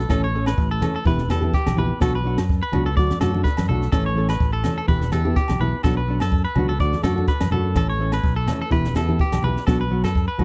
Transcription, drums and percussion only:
0.10 kick, snare, high conga, low agogo
0.46 snare, low agogo
0.58 kick
0.82 snare, high conga, low conga, low agogo
1.05 kick
1.19 snare, high conga
1.30 snare, low conga, low agogo
1.42 high conga
1.54 kick, snare
1.66 snare, high conga, low agogo
1.78 low conga
2.01 kick, snare, high conga, low agogo
2.38 snare, low agogo
2.49 kick
2.73 high conga, low conga, low agogo
2.97 kick
3.10 snare, high conga
3.21 snare, low conga, low agogo
3.34 high conga
3.45 kick, snare
3.57 snare, high conga, low agogo
3.69 low conga
3.82 snare
3.92 kick, snare, high conga, low agogo
4.29 snare, low agogo
4.40 kick
4.64 snare, high conga, low conga, low agogo
4.88 kick
5.01 snare, high conga
5.12 snare, low conga, low agogo
5.25 high conga
5.36 kick, snare
5.48 snare, high conga, low agogo
5.61 low conga
5.83 kick, snare, high conga, low agogo
6.20 snare, low agogo
6.32 kick
6.55 high conga, low conga, low agogo
6.80 kick
6.93 snare, high conga
7.03 snare, low conga, low agogo
7.18 high conga
7.27 kick, snare
7.40 snare, high conga, low agogo
7.52 low conga
7.76 kick, snare, high conga, low agogo
8.12 snare, low agogo
8.24 kick
8.47 snare, high conga, low conga, low agogo
8.71 kick
8.85 snare, high conga
8.95 snare, low conga, low agogo
9.09 high conga
9.19 kick
9.32 snare, high conga, low agogo
9.43 low conga
9.57 snare
9.67 kick, snare, high conga, low agogo
10.04 snare, low agogo
10.15 kick
10.39 high conga, low conga, low agogo

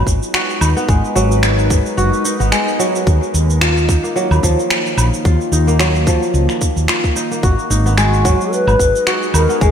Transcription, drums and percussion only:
0.07 kick, cabasa
0.23 cabasa
0.34 finger snap, cabasa
0.50 cabasa
0.61 cabasa, low woodblock
0.77 cabasa
0.89 kick, cabasa
1.04 cabasa
1.16 cabasa
1.32 cabasa
1.43 finger snap, cabasa
1.59 cabasa
1.70 kick, cabasa
1.86 cabasa
1.98 cabasa
2.13 cabasa
2.25 cabasa
2.41 cabasa
2.52 finger snap, cabasa
2.68 cabasa
2.80 cabasa
2.96 cabasa
3.07 kick, cabasa
3.23 cabasa
3.35 cabasa
3.50 cabasa
3.61 finger snap, cabasa
3.77 cabasa
3.89 kick, cabasa
4.05 cabasa
4.17 cabasa
4.31 cabasa, low woodblock
4.43 kick, cabasa
4.59 cabasa
4.70 finger snap, cabasa
4.87 cabasa
4.98 cabasa, low woodblock
5.14 cabasa
5.25 kick, cabasa
5.41 cabasa
5.53 cabasa
5.68 cabasa
5.79 finger snap, cabasa
5.95 cabasa
6.07 kick, cabasa
6.23 cabasa
6.34 cabasa
6.49 finger snap, cabasa
6.61 kick, cabasa
6.77 cabasa
6.88 finger snap, cabasa
7.04 kick, cabasa
7.16 cabasa
7.32 cabasa
7.43 kick, cabasa
7.59 cabasa
7.71 cabasa
7.86 cabasa
7.98 finger snap, cabasa
8.14 cabasa
8.25 kick, cabasa
8.41 cabasa
8.53 cabasa
8.68 cabasa, low woodblock
8.80 kick, cabasa
8.96 cabasa
9.07 finger snap, cabasa
9.23 cabasa
9.34 cabasa, low woodblock
9.50 cabasa
9.61 kick, cabasa

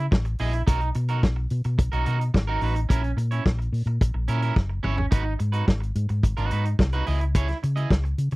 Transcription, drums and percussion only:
0.12 kick, snare
0.25 closed hi-hat
0.38 open hi-hat
0.53 closed hi-hat
0.67 kick, closed hi-hat
0.80 closed hi-hat
0.94 closed hi-hat
1.08 closed hi-hat
1.23 kick, snare
1.50 closed hi-hat
1.64 closed hi-hat
1.79 kick, closed hi-hat
1.93 closed hi-hat
2.06 closed hi-hat
2.21 closed hi-hat
2.34 kick, snare
2.61 open hi-hat
2.76 closed hi-hat
2.90 kick, closed hi-hat
3.04 closed hi-hat
3.18 closed hi-hat
3.31 closed hi-hat
3.46 kick, snare
3.62 closed hi-hat
3.74 open hi-hat
3.87 closed hi-hat
4.01 kick, closed hi-hat
4.28 closed hi-hat
4.42 closed hi-hat
4.56 kick, snare
4.84 mid tom
4.98 floor tom
5.11 kick, closed hi-hat
5.39 closed hi-hat
5.53 closed hi-hat
5.68 kick, snare
5.83 closed hi-hat
5.95 closed hi-hat
6.09 closed hi-hat
6.23 kick, closed hi-hat
6.37 closed hi-hat
6.51 closed hi-hat
6.65 closed hi-hat
6.79 kick, snare
6.92 closed hi-hat
7.06 open hi-hat
7.21 closed hi-hat
7.35 kick, closed hi-hat
7.48 snare, closed hi-hat
7.63 closed hi-hat
7.77 closed hi-hat
7.91 kick, snare
8.05 closed hi-hat
8.18 closed hi-hat
8.31 closed hi-hat

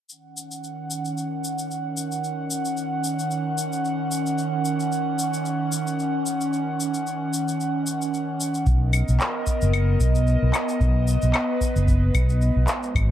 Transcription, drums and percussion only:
0.09 shaker
0.37 shaker
0.51 shaker
0.64 shaker
0.91 shaker
1.05 shaker
1.18 shaker
1.44 shaker
1.59 shaker
1.71 shaker
1.97 shaker
2.12 shaker
2.24 shaker
2.51 shaker
2.65 shaker
2.77 shaker
3.04 shaker
3.19 shaker
3.31 shaker
3.58 shaker
3.73 shaker
3.85 shaker
4.11 shaker
4.26 shaker
4.38 shaker
4.65 shaker
4.80 shaker
4.92 shaker
5.19 shaker
5.34 shaker
5.45 shaker
5.72 shaker
5.87 shaker
5.99 shaker
6.26 shaker
6.41 shaker
6.53 shaker
6.80 shaker
6.94 shaker
7.07 shaker
7.33 shaker
7.48 shaker
7.61 shaker
7.87 shaker
8.02 shaker
8.14 shaker
8.40 shaker
8.54 shaker
8.67 kick, shaker
8.93 claves, shaker
9.08 shaker
9.20 clap, shaker
9.47 kick, shaker
9.61 shaker
9.73 claves, shaker
10.00 kick, shaker
10.15 shaker
10.27 shaker
10.54 clap, claves, shaker
10.69 shaker
10.81 kick, shaker
11.08 shaker
11.22 shaker
11.34 clap, claves, shaker
11.61 kick, shaker
11.76 shaker
11.88 kick, shaker
12.15 kick, claves, shaker
12.29 shaker
12.41 shaker
12.56 kick
12.68 clap, shaker
12.83 shaker
12.95 kick, claves, shaker

